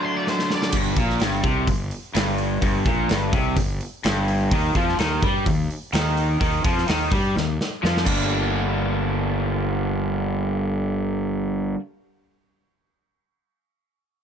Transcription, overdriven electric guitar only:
0, 0, Header, 1, 2, 480
1, 0, Start_track
1, 0, Key_signature, -2, "minor"
1, 0, Tempo, 473560
1, 744, Time_signature, 4, 2, 24, 8
1, 14429, End_track
2, 0, Start_track
2, 0, Title_t, "Overdriven electric guitar"
2, 0, Program_c, 0, 29
2, 0, Note_on_c, 0, 50, 99
2, 0, Note_on_c, 0, 54, 94
2, 0, Note_on_c, 0, 57, 96
2, 0, Note_on_c, 0, 62, 102
2, 729, Note_off_c, 0, 50, 0
2, 734, Note_off_c, 0, 54, 0
2, 738, Note_off_c, 0, 57, 0
2, 741, Note_off_c, 0, 62, 0
2, 746, Note_on_c, 0, 43, 95
2, 978, Note_off_c, 0, 43, 0
2, 986, Note_on_c, 0, 46, 103
2, 1218, Note_off_c, 0, 46, 0
2, 1223, Note_on_c, 0, 43, 101
2, 1456, Note_off_c, 0, 43, 0
2, 1459, Note_on_c, 0, 48, 107
2, 1694, Note_off_c, 0, 48, 0
2, 1700, Note_on_c, 0, 43, 83
2, 1894, Note_off_c, 0, 43, 0
2, 2173, Note_on_c, 0, 43, 101
2, 2642, Note_off_c, 0, 43, 0
2, 2654, Note_on_c, 0, 43, 92
2, 2891, Note_off_c, 0, 43, 0
2, 2895, Note_on_c, 0, 46, 102
2, 3131, Note_off_c, 0, 46, 0
2, 3131, Note_on_c, 0, 43, 87
2, 3369, Note_off_c, 0, 43, 0
2, 3375, Note_on_c, 0, 48, 93
2, 3611, Note_off_c, 0, 48, 0
2, 3618, Note_on_c, 0, 43, 81
2, 3812, Note_off_c, 0, 43, 0
2, 4098, Note_on_c, 0, 43, 102
2, 4572, Note_off_c, 0, 43, 0
2, 4578, Note_on_c, 0, 51, 91
2, 4811, Note_off_c, 0, 51, 0
2, 4826, Note_on_c, 0, 53, 105
2, 5056, Note_off_c, 0, 53, 0
2, 5060, Note_on_c, 0, 51, 105
2, 5292, Note_off_c, 0, 51, 0
2, 5301, Note_on_c, 0, 55, 99
2, 5533, Note_off_c, 0, 55, 0
2, 5544, Note_on_c, 0, 51, 77
2, 5733, Note_off_c, 0, 51, 0
2, 6019, Note_on_c, 0, 51, 108
2, 6484, Note_off_c, 0, 51, 0
2, 6496, Note_on_c, 0, 51, 109
2, 6730, Note_off_c, 0, 51, 0
2, 6743, Note_on_c, 0, 53, 89
2, 6974, Note_off_c, 0, 53, 0
2, 6978, Note_on_c, 0, 51, 93
2, 7211, Note_off_c, 0, 51, 0
2, 7214, Note_on_c, 0, 55, 91
2, 7449, Note_off_c, 0, 55, 0
2, 7460, Note_on_c, 0, 51, 83
2, 7651, Note_off_c, 0, 51, 0
2, 7936, Note_on_c, 0, 53, 94
2, 8156, Note_on_c, 0, 43, 85
2, 8166, Note_off_c, 0, 53, 0
2, 8171, Note_on_c, 0, 50, 90
2, 8183, Note_on_c, 0, 55, 73
2, 8189, Note_on_c, 0, 58, 82
2, 8198, Note_on_c, 0, 62, 88
2, 11929, Note_off_c, 0, 43, 0
2, 11943, Note_off_c, 0, 50, 0
2, 11956, Note_off_c, 0, 55, 0
2, 11962, Note_off_c, 0, 58, 0
2, 11971, Note_off_c, 0, 62, 0
2, 14429, End_track
0, 0, End_of_file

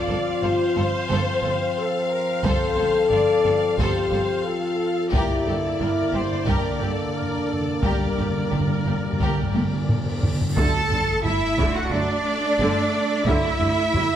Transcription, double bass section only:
0, 0, Header, 1, 2, 480
1, 0, Start_track
1, 0, Tempo, 672646
1, 1741, Time_signature, 4, 2, 24, 8
1, 5102, Tempo, 684151
1, 7502, Tempo, 674157
1, 10056, End_track
2, 0, Start_track
2, 0, Title_t, "Double bass section"
2, 0, Program_c, 0, 48
2, 57, Note_on_c, 0, 31, 49
2, 115, Note_off_c, 0, 31, 0
2, 304, Note_on_c, 0, 31, 48
2, 362, Note_off_c, 0, 31, 0
2, 545, Note_on_c, 0, 31, 47
2, 602, Note_off_c, 0, 31, 0
2, 790, Note_on_c, 0, 31, 70
2, 847, Note_off_c, 0, 31, 0
2, 1026, Note_on_c, 0, 31, 47
2, 1084, Note_off_c, 0, 31, 0
2, 1740, Note_on_c, 0, 31, 68
2, 1797, Note_off_c, 0, 31, 0
2, 1978, Note_on_c, 0, 31, 53
2, 2035, Note_off_c, 0, 31, 0
2, 2219, Note_on_c, 0, 31, 50
2, 2276, Note_off_c, 0, 31, 0
2, 2462, Note_on_c, 0, 31, 51
2, 2519, Note_off_c, 0, 31, 0
2, 2701, Note_on_c, 0, 31, 70
2, 2758, Note_off_c, 0, 31, 0
2, 2941, Note_on_c, 0, 31, 47
2, 2998, Note_off_c, 0, 31, 0
2, 3661, Note_on_c, 0, 31, 65
2, 3718, Note_off_c, 0, 31, 0
2, 3899, Note_on_c, 0, 31, 49
2, 3956, Note_off_c, 0, 31, 0
2, 4141, Note_on_c, 0, 31, 47
2, 4198, Note_off_c, 0, 31, 0
2, 4378, Note_on_c, 0, 31, 44
2, 4435, Note_off_c, 0, 31, 0
2, 4618, Note_on_c, 0, 31, 63
2, 4675, Note_off_c, 0, 31, 0
2, 4858, Note_on_c, 0, 31, 42
2, 4915, Note_off_c, 0, 31, 0
2, 5579, Note_on_c, 0, 31, 53
2, 5635, Note_off_c, 0, 31, 0
2, 5823, Note_on_c, 0, 31, 41
2, 5879, Note_off_c, 0, 31, 0
2, 6065, Note_on_c, 0, 31, 43
2, 6121, Note_off_c, 0, 31, 0
2, 6302, Note_on_c, 0, 31, 38
2, 6359, Note_off_c, 0, 31, 0
2, 6547, Note_on_c, 0, 31, 54
2, 6603, Note_off_c, 0, 31, 0
2, 6782, Note_on_c, 0, 31, 36
2, 6838, Note_off_c, 0, 31, 0
2, 7508, Note_on_c, 0, 31, 64
2, 7564, Note_off_c, 0, 31, 0
2, 7746, Note_on_c, 0, 31, 51
2, 7803, Note_off_c, 0, 31, 0
2, 7985, Note_on_c, 0, 31, 51
2, 8042, Note_off_c, 0, 31, 0
2, 8224, Note_on_c, 0, 31, 63
2, 8281, Note_off_c, 0, 31, 0
2, 8458, Note_on_c, 0, 31, 53
2, 8515, Note_off_c, 0, 31, 0
2, 8943, Note_on_c, 0, 31, 72
2, 9000, Note_off_c, 0, 31, 0
2, 9419, Note_on_c, 0, 31, 71
2, 9476, Note_off_c, 0, 31, 0
2, 9659, Note_on_c, 0, 31, 53
2, 9716, Note_off_c, 0, 31, 0
2, 9898, Note_on_c, 0, 31, 52
2, 9955, Note_off_c, 0, 31, 0
2, 10056, End_track
0, 0, End_of_file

